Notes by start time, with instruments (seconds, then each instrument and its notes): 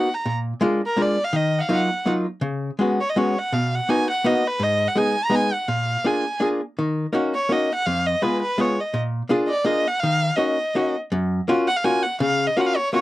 Already playing: erhu F#5
0.14 erhu A#5
0.26 hollow-body jazz guitar A#2
0.61 hollow-body jazz guitar G#3 A#3 D4 F4
0.86 erhu A#4
0.97 hollow-body jazz guitar G#3 A#3 D4 F4
1.02 erhu D5
1.24 erhu F5
1.33 hollow-body jazz guitar D#3, erhu D#5
1.59 erhu F5 F#5
1.69 hollow-body jazz guitar F#3 A#3 D#4 F4
1.74 erhu F#5
2.06 hollow-body jazz guitar F#3 A#3 D#4 F4
2.41 hollow-body jazz guitar C#3
2.79 hollow-body jazz guitar G#3 B3 C#4 F#4
3.01 erhu C#5
3.09 erhu D#5
3.16 hollow-body jazz guitar G#3 B3 C#4 F#4, erhu C#5
3.38 erhu F#5
3.53 hollow-body jazz guitar B2, erhu F5
3.75 erhu F#5
3.89 hollow-body jazz guitar A#3 B3 D#4 F#4, erhu G#5
4.10 erhu F#5
4.24 hollow-body jazz guitar A#3 B3 D#4 F#4, erhu D#5
4.47 erhu B4
4.60 hollow-body jazz guitar G#2, erhu D#5
4.88 erhu F#5
4.95 hollow-body jazz guitar G#3 B3 D#4 G#4, erhu G#5
5.24 erhu A#5
5.30 hollow-body jazz guitar G#3 B3 D#4 G#4
5.35 erhu G#5
5.53 erhu F#5
5.68 hollow-body jazz guitar A#2, erhu F5
6.04 hollow-body jazz guitar A#3 D4 F4 G#4, erhu G#5
6.40 hollow-body jazz guitar A#3 D4 F4 G#4
6.79 hollow-body jazz guitar D#3
7.13 hollow-body jazz guitar A#3 C#4 D#4 F#4
7.35 erhu C#5
7.49 hollow-body jazz guitar A#3 C#4 D#4 F#4, erhu D#5
7.75 erhu F#5
7.86 hollow-body jazz guitar F2, erhu F5
8.06 erhu D#5
8.22 hollow-body jazz guitar G#3 B3 F4 G#4, erhu B4
8.41 erhu B4
8.58 hollow-body jazz guitar G#3 B3 F4 G#4, erhu C#5
8.80 erhu D#5
8.94 hollow-body jazz guitar A#2
9.29 hollow-body jazz guitar A#3 D4 F4 G#4
9.46 erhu D5 D#5
9.65 hollow-body jazz guitar A#3 D4 F4 G#4, erhu D#5
9.88 erhu F#5
9.99 hollow-body jazz guitar D#3, erhu F5
10.36 hollow-body jazz guitar A#3 C#4 D#4 F#4, erhu D#5
10.75 hollow-body jazz guitar A#3 C#4 D#4 F#4
11.12 hollow-body jazz guitar F#2
11.48 hollow-body jazz guitar A#3 C#4 F4 F#4
11.68 erhu F#5
11.76 erhu F5
11.84 hollow-body jazz guitar A#3 C#4 F4 F#4, erhu G#5
12.03 erhu F#5
12.20 hollow-body jazz guitar C#3, erhu F5
12.47 erhu D#5
12.57 hollow-body jazz guitar A#3 C#4 F4 F#4, erhu F5 F#5
12.66 erhu F5
12.76 erhu C#5
12.93 hollow-body jazz guitar A#3 C#4 F4 F#4, erhu C#5